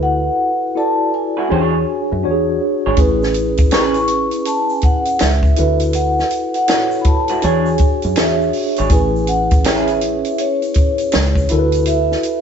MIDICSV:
0, 0, Header, 1, 6, 480
1, 0, Start_track
1, 0, Tempo, 740741
1, 6, Time_signature, 4, 2, 24, 8
1, 8042, End_track
2, 0, Start_track
2, 0, Title_t, "Vibraphone"
2, 0, Program_c, 0, 11
2, 18, Note_on_c, 0, 78, 99
2, 502, Note_on_c, 0, 81, 101
2, 506, Note_off_c, 0, 78, 0
2, 718, Note_off_c, 0, 81, 0
2, 739, Note_on_c, 0, 80, 87
2, 1427, Note_off_c, 0, 80, 0
2, 2414, Note_on_c, 0, 85, 95
2, 2891, Note_on_c, 0, 81, 91
2, 2905, Note_off_c, 0, 85, 0
2, 3046, Note_off_c, 0, 81, 0
2, 3053, Note_on_c, 0, 80, 82
2, 3136, Note_off_c, 0, 80, 0
2, 3137, Note_on_c, 0, 78, 96
2, 3331, Note_off_c, 0, 78, 0
2, 3339, Note_on_c, 0, 78, 61
2, 3369, Note_off_c, 0, 78, 0
2, 3376, Note_on_c, 0, 76, 88
2, 3739, Note_off_c, 0, 76, 0
2, 3855, Note_on_c, 0, 78, 94
2, 4239, Note_off_c, 0, 78, 0
2, 4247, Note_on_c, 0, 78, 93
2, 4544, Note_on_c, 0, 83, 66
2, 4546, Note_off_c, 0, 78, 0
2, 4572, Note_off_c, 0, 83, 0
2, 4581, Note_on_c, 0, 81, 90
2, 4815, Note_on_c, 0, 80, 92
2, 4821, Note_off_c, 0, 81, 0
2, 5300, Note_on_c, 0, 76, 85
2, 5305, Note_off_c, 0, 80, 0
2, 5660, Note_off_c, 0, 76, 0
2, 5779, Note_on_c, 0, 80, 93
2, 6017, Note_on_c, 0, 78, 85
2, 6020, Note_off_c, 0, 80, 0
2, 6235, Note_off_c, 0, 78, 0
2, 6263, Note_on_c, 0, 76, 84
2, 6741, Note_on_c, 0, 73, 77
2, 6749, Note_off_c, 0, 76, 0
2, 7428, Note_off_c, 0, 73, 0
2, 7690, Note_on_c, 0, 76, 85
2, 8042, Note_off_c, 0, 76, 0
2, 8042, End_track
3, 0, Start_track
3, 0, Title_t, "Clean electric guitar"
3, 0, Program_c, 1, 27
3, 887, Note_on_c, 1, 71, 57
3, 892, Note_on_c, 1, 66, 47
3, 897, Note_on_c, 1, 64, 46
3, 955, Note_off_c, 1, 71, 0
3, 957, Note_off_c, 1, 66, 0
3, 960, Note_off_c, 1, 64, 0
3, 975, Note_on_c, 1, 62, 80
3, 980, Note_on_c, 1, 68, 82
3, 983, Note_on_c, 1, 73, 79
3, 1131, Note_off_c, 1, 62, 0
3, 1133, Note_off_c, 1, 68, 0
3, 1135, Note_off_c, 1, 73, 0
3, 1854, Note_on_c, 1, 73, 61
3, 1856, Note_on_c, 1, 68, 56
3, 1857, Note_on_c, 1, 62, 48
3, 1918, Note_off_c, 1, 73, 0
3, 1920, Note_off_c, 1, 62, 0
3, 1920, Note_off_c, 1, 68, 0
3, 2412, Note_on_c, 1, 61, 72
3, 2418, Note_on_c, 1, 68, 73
3, 2423, Note_on_c, 1, 71, 87
3, 2569, Note_off_c, 1, 61, 0
3, 2572, Note_off_c, 1, 68, 0
3, 2575, Note_off_c, 1, 71, 0
3, 4728, Note_on_c, 1, 71, 61
3, 4731, Note_on_c, 1, 66, 61
3, 4735, Note_on_c, 1, 64, 49
3, 4795, Note_off_c, 1, 71, 0
3, 4797, Note_off_c, 1, 66, 0
3, 4799, Note_off_c, 1, 64, 0
3, 4817, Note_on_c, 1, 62, 80
3, 4821, Note_on_c, 1, 68, 82
3, 4825, Note_on_c, 1, 73, 89
3, 4970, Note_off_c, 1, 62, 0
3, 4971, Note_off_c, 1, 68, 0
3, 4973, Note_off_c, 1, 73, 0
3, 5691, Note_on_c, 1, 73, 57
3, 5692, Note_on_c, 1, 68, 52
3, 5696, Note_on_c, 1, 62, 50
3, 5757, Note_off_c, 1, 73, 0
3, 5758, Note_off_c, 1, 68, 0
3, 5759, Note_off_c, 1, 62, 0
3, 6257, Note_on_c, 1, 61, 85
3, 6257, Note_on_c, 1, 68, 97
3, 6262, Note_on_c, 1, 71, 99
3, 6412, Note_off_c, 1, 61, 0
3, 6412, Note_off_c, 1, 68, 0
3, 6414, Note_off_c, 1, 71, 0
3, 8042, End_track
4, 0, Start_track
4, 0, Title_t, "Tine electric piano"
4, 0, Program_c, 2, 4
4, 0, Control_c, 2, 64, 127
4, 0, Note_on_c, 2, 64, 69
4, 0, Note_on_c, 2, 66, 65
4, 0, Note_on_c, 2, 69, 68
4, 0, Note_on_c, 2, 71, 76
4, 411, Note_off_c, 2, 64, 0
4, 413, Note_off_c, 2, 66, 0
4, 415, Note_off_c, 2, 69, 0
4, 417, Note_off_c, 2, 71, 0
4, 487, Note_on_c, 2, 64, 71
4, 490, Note_on_c, 2, 66, 62
4, 495, Note_on_c, 2, 69, 62
4, 499, Note_on_c, 2, 74, 76
4, 960, Note_off_c, 2, 66, 0
4, 965, Note_on_c, 2, 62, 69
4, 967, Note_off_c, 2, 64, 0
4, 968, Note_on_c, 2, 66, 67
4, 971, Note_off_c, 2, 69, 0
4, 973, Note_off_c, 2, 74, 0
4, 973, Note_on_c, 2, 68, 66
4, 976, Control_c, 2, 64, 0
4, 979, Note_on_c, 2, 73, 79
4, 1104, Control_c, 2, 64, 127
4, 1395, Note_off_c, 2, 62, 0
4, 1396, Note_off_c, 2, 66, 0
4, 1399, Note_off_c, 2, 68, 0
4, 1402, Note_off_c, 2, 73, 0
4, 1447, Note_on_c, 2, 62, 79
4, 1451, Note_on_c, 2, 66, 77
4, 1455, Control_c, 2, 64, 0
4, 1455, Note_on_c, 2, 67, 63
4, 1460, Note_on_c, 2, 73, 93
4, 1497, Note_on_c, 2, 68, 76
4, 1504, Note_off_c, 2, 67, 0
4, 1551, Control_c, 2, 64, 127
4, 1876, Note_off_c, 2, 62, 0
4, 1878, Note_off_c, 2, 66, 0
4, 1883, Note_off_c, 2, 73, 0
4, 1901, Note_off_c, 2, 68, 0
4, 1926, Note_on_c, 2, 61, 86
4, 1931, Note_on_c, 2, 64, 74
4, 1935, Note_on_c, 2, 68, 75
4, 1936, Control_c, 2, 64, 0
4, 1941, Note_on_c, 2, 71, 90
4, 2064, Control_c, 2, 64, 127
4, 2355, Note_off_c, 2, 61, 0
4, 2358, Note_off_c, 2, 64, 0
4, 2360, Note_off_c, 2, 68, 0
4, 2363, Note_off_c, 2, 71, 0
4, 2406, Note_on_c, 2, 61, 70
4, 2410, Note_on_c, 2, 64, 63
4, 2415, Note_on_c, 2, 68, 64
4, 2421, Note_on_c, 2, 71, 77
4, 3253, Note_off_c, 2, 61, 0
4, 3255, Note_off_c, 2, 64, 0
4, 3257, Note_off_c, 2, 68, 0
4, 3260, Note_off_c, 2, 71, 0
4, 3610, Note_on_c, 2, 64, 73
4, 3614, Control_c, 2, 64, 0
4, 3614, Note_on_c, 2, 66, 66
4, 3619, Note_on_c, 2, 69, 71
4, 3624, Note_on_c, 2, 71, 79
4, 3712, Control_c, 2, 64, 127
4, 4252, Note_off_c, 2, 64, 0
4, 4254, Note_off_c, 2, 66, 0
4, 4256, Note_off_c, 2, 69, 0
4, 4259, Note_off_c, 2, 71, 0
4, 4329, Note_on_c, 2, 64, 72
4, 4334, Note_on_c, 2, 66, 66
4, 4340, Note_on_c, 2, 69, 62
4, 4343, Note_on_c, 2, 73, 78
4, 4808, Note_off_c, 2, 64, 0
4, 4808, Note_off_c, 2, 66, 0
4, 4810, Note_on_c, 2, 62, 73
4, 4813, Note_off_c, 2, 69, 0
4, 4814, Control_c, 2, 64, 0
4, 4815, Note_off_c, 2, 73, 0
4, 4816, Note_on_c, 2, 66, 62
4, 4820, Note_on_c, 2, 68, 69
4, 4825, Note_on_c, 2, 73, 82
4, 4940, Control_c, 2, 64, 127
4, 5237, Note_off_c, 2, 62, 0
4, 5240, Note_off_c, 2, 66, 0
4, 5242, Note_off_c, 2, 68, 0
4, 5245, Note_off_c, 2, 73, 0
4, 5294, Note_on_c, 2, 62, 74
4, 5295, Control_c, 2, 64, 0
4, 5297, Note_on_c, 2, 66, 69
4, 5302, Note_on_c, 2, 68, 68
4, 5306, Note_on_c, 2, 73, 77
4, 5397, Control_c, 2, 64, 127
4, 5720, Note_off_c, 2, 62, 0
4, 5721, Note_off_c, 2, 66, 0
4, 5723, Note_off_c, 2, 68, 0
4, 5726, Note_off_c, 2, 73, 0
4, 5771, Note_on_c, 2, 61, 72
4, 5775, Control_c, 2, 64, 0
4, 5776, Note_on_c, 2, 64, 65
4, 5780, Note_on_c, 2, 68, 67
4, 5784, Note_on_c, 2, 71, 82
4, 5898, Control_c, 2, 64, 127
4, 6198, Note_off_c, 2, 61, 0
4, 6200, Note_off_c, 2, 64, 0
4, 6202, Note_off_c, 2, 68, 0
4, 6204, Note_off_c, 2, 71, 0
4, 6251, Note_on_c, 2, 61, 73
4, 6256, Note_on_c, 2, 64, 68
4, 6259, Note_on_c, 2, 68, 66
4, 6265, Note_on_c, 2, 73, 84
4, 7095, Note_off_c, 2, 61, 0
4, 7098, Note_off_c, 2, 64, 0
4, 7100, Note_off_c, 2, 68, 0
4, 7102, Note_off_c, 2, 73, 0
4, 7451, Note_on_c, 2, 64, 92
4, 7454, Control_c, 2, 64, 0
4, 7456, Note_on_c, 2, 66, 82
4, 7461, Note_on_c, 2, 69, 86
4, 7465, Note_on_c, 2, 70, 75
4, 7509, Note_on_c, 2, 71, 99
4, 7510, Note_off_c, 2, 70, 0
4, 7564, Control_c, 2, 64, 127
4, 8042, Note_off_c, 2, 64, 0
4, 8042, Note_off_c, 2, 66, 0
4, 8042, Note_off_c, 2, 69, 0
4, 8042, Note_off_c, 2, 71, 0
4, 8042, End_track
5, 0, Start_track
5, 0, Title_t, "Fingered electric bass"
5, 0, Program_c, 3, 33
5, 0, Note_on_c, 3, 38, 80
5, 180, Note_off_c, 3, 38, 0
5, 982, Note_on_c, 3, 40, 105
5, 1178, Note_off_c, 3, 40, 0
5, 1376, Note_on_c, 3, 42, 91
5, 1467, Note_off_c, 3, 42, 0
5, 1467, Note_on_c, 3, 40, 102
5, 1661, Note_off_c, 3, 40, 0
5, 1858, Note_on_c, 3, 32, 78
5, 1924, Note_off_c, 3, 32, 0
5, 1936, Note_on_c, 3, 33, 95
5, 2778, Note_off_c, 3, 33, 0
5, 3381, Note_on_c, 3, 37, 100
5, 3578, Note_off_c, 3, 37, 0
5, 3623, Note_on_c, 3, 38, 88
5, 4022, Note_off_c, 3, 38, 0
5, 4823, Note_on_c, 3, 40, 101
5, 5019, Note_off_c, 3, 40, 0
5, 5215, Note_on_c, 3, 42, 88
5, 5300, Note_off_c, 3, 42, 0
5, 5300, Note_on_c, 3, 40, 101
5, 5497, Note_off_c, 3, 40, 0
5, 5699, Note_on_c, 3, 32, 87
5, 5765, Note_off_c, 3, 32, 0
5, 5776, Note_on_c, 3, 33, 100
5, 6618, Note_off_c, 3, 33, 0
5, 7228, Note_on_c, 3, 37, 105
5, 7422, Note_off_c, 3, 37, 0
5, 7465, Note_on_c, 3, 38, 89
5, 7863, Note_off_c, 3, 38, 0
5, 8042, End_track
6, 0, Start_track
6, 0, Title_t, "Drums"
6, 1922, Note_on_c, 9, 42, 85
6, 1924, Note_on_c, 9, 82, 61
6, 1926, Note_on_c, 9, 36, 99
6, 1987, Note_off_c, 9, 42, 0
6, 1989, Note_off_c, 9, 82, 0
6, 1991, Note_off_c, 9, 36, 0
6, 2090, Note_on_c, 9, 82, 42
6, 2093, Note_on_c, 9, 38, 33
6, 2155, Note_off_c, 9, 82, 0
6, 2158, Note_off_c, 9, 38, 0
6, 2164, Note_on_c, 9, 82, 48
6, 2165, Note_on_c, 9, 42, 57
6, 2228, Note_off_c, 9, 82, 0
6, 2230, Note_off_c, 9, 42, 0
6, 2316, Note_on_c, 9, 42, 46
6, 2317, Note_on_c, 9, 82, 43
6, 2324, Note_on_c, 9, 36, 89
6, 2380, Note_off_c, 9, 42, 0
6, 2382, Note_off_c, 9, 82, 0
6, 2389, Note_off_c, 9, 36, 0
6, 2404, Note_on_c, 9, 42, 93
6, 2411, Note_on_c, 9, 26, 59
6, 2411, Note_on_c, 9, 82, 63
6, 2415, Note_on_c, 9, 38, 101
6, 2469, Note_off_c, 9, 42, 0
6, 2476, Note_off_c, 9, 26, 0
6, 2476, Note_off_c, 9, 82, 0
6, 2479, Note_off_c, 9, 38, 0
6, 2553, Note_on_c, 9, 42, 31
6, 2556, Note_on_c, 9, 82, 45
6, 2618, Note_off_c, 9, 42, 0
6, 2621, Note_off_c, 9, 82, 0
6, 2641, Note_on_c, 9, 42, 68
6, 2706, Note_off_c, 9, 42, 0
6, 2793, Note_on_c, 9, 42, 42
6, 2801, Note_on_c, 9, 82, 45
6, 2858, Note_off_c, 9, 42, 0
6, 2866, Note_off_c, 9, 82, 0
6, 2885, Note_on_c, 9, 42, 74
6, 2890, Note_on_c, 9, 82, 68
6, 2950, Note_off_c, 9, 42, 0
6, 2955, Note_off_c, 9, 82, 0
6, 3042, Note_on_c, 9, 82, 42
6, 3106, Note_off_c, 9, 82, 0
6, 3120, Note_on_c, 9, 42, 52
6, 3128, Note_on_c, 9, 82, 35
6, 3131, Note_on_c, 9, 36, 88
6, 3184, Note_off_c, 9, 42, 0
6, 3193, Note_off_c, 9, 82, 0
6, 3195, Note_off_c, 9, 36, 0
6, 3274, Note_on_c, 9, 42, 43
6, 3280, Note_on_c, 9, 82, 51
6, 3339, Note_off_c, 9, 42, 0
6, 3344, Note_off_c, 9, 82, 0
6, 3363, Note_on_c, 9, 42, 89
6, 3366, Note_on_c, 9, 26, 68
6, 3366, Note_on_c, 9, 82, 69
6, 3375, Note_on_c, 9, 38, 104
6, 3428, Note_off_c, 9, 42, 0
6, 3431, Note_off_c, 9, 26, 0
6, 3431, Note_off_c, 9, 82, 0
6, 3439, Note_off_c, 9, 38, 0
6, 3517, Note_on_c, 9, 36, 76
6, 3528, Note_on_c, 9, 82, 48
6, 3582, Note_off_c, 9, 36, 0
6, 3592, Note_off_c, 9, 82, 0
6, 3604, Note_on_c, 9, 42, 67
6, 3669, Note_off_c, 9, 42, 0
6, 3756, Note_on_c, 9, 42, 50
6, 3767, Note_on_c, 9, 82, 42
6, 3821, Note_off_c, 9, 42, 0
6, 3832, Note_off_c, 9, 82, 0
6, 3843, Note_on_c, 9, 42, 83
6, 3844, Note_on_c, 9, 82, 58
6, 3908, Note_off_c, 9, 42, 0
6, 3908, Note_off_c, 9, 82, 0
6, 4009, Note_on_c, 9, 82, 43
6, 4013, Note_on_c, 9, 38, 32
6, 4074, Note_off_c, 9, 82, 0
6, 4078, Note_off_c, 9, 38, 0
6, 4082, Note_on_c, 9, 82, 48
6, 4085, Note_on_c, 9, 42, 59
6, 4147, Note_off_c, 9, 82, 0
6, 4150, Note_off_c, 9, 42, 0
6, 4238, Note_on_c, 9, 42, 46
6, 4239, Note_on_c, 9, 82, 47
6, 4303, Note_off_c, 9, 42, 0
6, 4303, Note_off_c, 9, 82, 0
6, 4327, Note_on_c, 9, 42, 87
6, 4331, Note_on_c, 9, 26, 60
6, 4331, Note_on_c, 9, 82, 64
6, 4338, Note_on_c, 9, 38, 100
6, 4392, Note_off_c, 9, 42, 0
6, 4396, Note_off_c, 9, 26, 0
6, 4396, Note_off_c, 9, 82, 0
6, 4403, Note_off_c, 9, 38, 0
6, 4478, Note_on_c, 9, 82, 45
6, 4543, Note_off_c, 9, 82, 0
6, 4565, Note_on_c, 9, 42, 67
6, 4569, Note_on_c, 9, 36, 91
6, 4630, Note_off_c, 9, 42, 0
6, 4634, Note_off_c, 9, 36, 0
6, 4717, Note_on_c, 9, 42, 45
6, 4721, Note_on_c, 9, 82, 44
6, 4781, Note_off_c, 9, 42, 0
6, 4786, Note_off_c, 9, 82, 0
6, 4808, Note_on_c, 9, 42, 71
6, 4808, Note_on_c, 9, 82, 65
6, 4873, Note_off_c, 9, 42, 0
6, 4873, Note_off_c, 9, 82, 0
6, 4962, Note_on_c, 9, 82, 44
6, 5026, Note_off_c, 9, 82, 0
6, 5041, Note_on_c, 9, 42, 54
6, 5050, Note_on_c, 9, 82, 39
6, 5053, Note_on_c, 9, 36, 86
6, 5105, Note_off_c, 9, 42, 0
6, 5115, Note_off_c, 9, 82, 0
6, 5117, Note_off_c, 9, 36, 0
6, 5197, Note_on_c, 9, 42, 44
6, 5201, Note_on_c, 9, 82, 52
6, 5262, Note_off_c, 9, 42, 0
6, 5266, Note_off_c, 9, 82, 0
6, 5286, Note_on_c, 9, 42, 90
6, 5287, Note_on_c, 9, 26, 69
6, 5287, Note_on_c, 9, 82, 65
6, 5297, Note_on_c, 9, 38, 113
6, 5350, Note_off_c, 9, 42, 0
6, 5352, Note_off_c, 9, 26, 0
6, 5352, Note_off_c, 9, 82, 0
6, 5362, Note_off_c, 9, 38, 0
6, 5449, Note_on_c, 9, 82, 46
6, 5514, Note_off_c, 9, 82, 0
6, 5528, Note_on_c, 9, 46, 48
6, 5592, Note_off_c, 9, 46, 0
6, 5679, Note_on_c, 9, 42, 47
6, 5691, Note_on_c, 9, 82, 48
6, 5744, Note_off_c, 9, 42, 0
6, 5756, Note_off_c, 9, 82, 0
6, 5765, Note_on_c, 9, 42, 77
6, 5768, Note_on_c, 9, 36, 96
6, 5768, Note_on_c, 9, 82, 57
6, 5829, Note_off_c, 9, 42, 0
6, 5833, Note_off_c, 9, 36, 0
6, 5833, Note_off_c, 9, 82, 0
6, 5935, Note_on_c, 9, 82, 40
6, 6000, Note_off_c, 9, 82, 0
6, 6007, Note_on_c, 9, 42, 57
6, 6009, Note_on_c, 9, 82, 50
6, 6072, Note_off_c, 9, 42, 0
6, 6074, Note_off_c, 9, 82, 0
6, 6161, Note_on_c, 9, 42, 49
6, 6161, Note_on_c, 9, 82, 41
6, 6167, Note_on_c, 9, 36, 90
6, 6226, Note_off_c, 9, 42, 0
6, 6226, Note_off_c, 9, 82, 0
6, 6232, Note_off_c, 9, 36, 0
6, 6249, Note_on_c, 9, 42, 84
6, 6256, Note_on_c, 9, 26, 62
6, 6256, Note_on_c, 9, 82, 61
6, 6259, Note_on_c, 9, 38, 99
6, 6313, Note_off_c, 9, 42, 0
6, 6320, Note_off_c, 9, 26, 0
6, 6320, Note_off_c, 9, 82, 0
6, 6324, Note_off_c, 9, 38, 0
6, 6398, Note_on_c, 9, 42, 32
6, 6402, Note_on_c, 9, 82, 47
6, 6463, Note_off_c, 9, 42, 0
6, 6467, Note_off_c, 9, 82, 0
6, 6487, Note_on_c, 9, 42, 68
6, 6552, Note_off_c, 9, 42, 0
6, 6639, Note_on_c, 9, 42, 42
6, 6646, Note_on_c, 9, 82, 46
6, 6704, Note_off_c, 9, 42, 0
6, 6711, Note_off_c, 9, 82, 0
6, 6727, Note_on_c, 9, 42, 71
6, 6731, Note_on_c, 9, 82, 69
6, 6792, Note_off_c, 9, 42, 0
6, 6796, Note_off_c, 9, 82, 0
6, 6882, Note_on_c, 9, 42, 31
6, 6885, Note_on_c, 9, 82, 46
6, 6946, Note_off_c, 9, 42, 0
6, 6949, Note_off_c, 9, 82, 0
6, 6960, Note_on_c, 9, 42, 57
6, 6972, Note_on_c, 9, 36, 87
6, 6972, Note_on_c, 9, 82, 38
6, 7025, Note_off_c, 9, 42, 0
6, 7037, Note_off_c, 9, 36, 0
6, 7037, Note_off_c, 9, 82, 0
6, 7115, Note_on_c, 9, 42, 42
6, 7125, Note_on_c, 9, 82, 53
6, 7180, Note_off_c, 9, 42, 0
6, 7189, Note_off_c, 9, 82, 0
6, 7204, Note_on_c, 9, 42, 91
6, 7208, Note_on_c, 9, 26, 65
6, 7208, Note_on_c, 9, 82, 72
6, 7216, Note_on_c, 9, 38, 112
6, 7269, Note_off_c, 9, 42, 0
6, 7273, Note_off_c, 9, 26, 0
6, 7273, Note_off_c, 9, 82, 0
6, 7281, Note_off_c, 9, 38, 0
6, 7358, Note_on_c, 9, 36, 77
6, 7371, Note_on_c, 9, 82, 49
6, 7423, Note_off_c, 9, 36, 0
6, 7436, Note_off_c, 9, 82, 0
6, 7444, Note_on_c, 9, 42, 70
6, 7508, Note_off_c, 9, 42, 0
6, 7594, Note_on_c, 9, 42, 51
6, 7609, Note_on_c, 9, 82, 46
6, 7659, Note_off_c, 9, 42, 0
6, 7674, Note_off_c, 9, 82, 0
6, 7682, Note_on_c, 9, 42, 86
6, 7688, Note_on_c, 9, 82, 60
6, 7747, Note_off_c, 9, 42, 0
6, 7753, Note_off_c, 9, 82, 0
6, 7852, Note_on_c, 9, 38, 33
6, 7853, Note_on_c, 9, 82, 44
6, 7916, Note_off_c, 9, 38, 0
6, 7918, Note_off_c, 9, 82, 0
6, 7925, Note_on_c, 9, 42, 58
6, 7925, Note_on_c, 9, 82, 49
6, 7990, Note_off_c, 9, 42, 0
6, 7990, Note_off_c, 9, 82, 0
6, 8042, End_track
0, 0, End_of_file